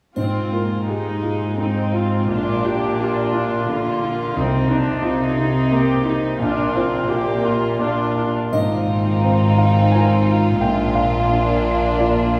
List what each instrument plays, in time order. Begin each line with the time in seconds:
0.16 grand piano G#2, cello section G#2, viola section C4 F4, triangle
0.51 viola section A#3, grand piano F4
0.89 viola section G#3 D#4, grand piano G4
1.22 grand piano F4
1.58 viola section C4 D#4, grand piano D#4
1.92 grand piano F4, viola section F4
2.28 grand piano A#1, cello section A#2, viola section D4 F4
2.63 grand piano F4, viola section G4
2.99 viola section D4 F4, grand piano G4
3.33 grand piano F4
3.69 cello section D3, viola section A#3 F4, grand piano D4
4.02 grand piano F4
4.37 grand piano C2, cello section C3, viola section C4 D#4
4.70 viola section D4, grand piano D#4
5.03 viola section D#4, grand piano F4
5.38 grand piano D#4
5.71 grand piano A#3, viola section G4
6.05 grand piano D#4, viola section D#4
6.39 grand piano A#1, cello section A#2, viola section D4 F4
6.75 viola section C4, grand piano F4
7.10 viola section A#3 G4, grand piano G4
7.42 grand piano F4, viola section F4
7.79 grand piano A#3 D5, viola section D4 F4
8.15 grand piano F4
8.52 double bass section G#1, grand piano G#2 D#5, cello section G#2, viola section C4, violin section D#4 F4, triangle
9.24 grand piano C4
9.58 grand piano F5
9.92 grand piano F4 C5 G#5
10.60 grand piano A#1 G5, double bass section A#1, cello section A#2, viola section A#3, violin section D4
10.95 grand piano F5
11.30 grand piano D4
11.98 grand piano F4 A#4 D5